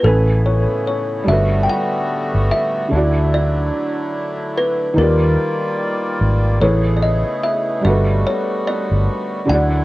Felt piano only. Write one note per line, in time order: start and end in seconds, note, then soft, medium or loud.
0.03 1.26 A2 medium
0.03 1.27 A3 medium
0.03 1.28 C#4 medium
0.03 1.28 G#5 medium
0.07 1.29 B4 medium
1.24 2.86 G3 medium
1.24 2.87 D4 medium
1.28 2.89 F#4 medium
1.28 2.90 A4 medium
1.32 2.91 B4 medium
2.88 4.91 D3 medium
2.88 4.92 D4 medium
2.93 4.93 E4 medium
2.93 4.94 F#4 medium
2.97 4.96 D5 medium
4.94 6.56 D#3 medium
4.94 6.57 D#4 medium
4.98 6.58 F4 medium
4.98 6.59 G4 medium
5.02 6.61 D5 medium
6.60 7.84 A3 medium
6.60 7.84 E4 medium
6.60 7.85 G#4 medium
6.60 7.85 B4 medium
6.64 7.86 C#5 medium
7.81 9.44 G3 medium
7.81 9.45 D4 medium
7.85 9.46 F#4 medium
7.85 9.47 A4 medium
7.90 9.48 B4 medium
9.45 9.84 D3 medium
9.45 9.84 D4 medium
9.50 9.84 E4 medium
9.50 9.84 F#4 medium
9.54 9.84 D5 medium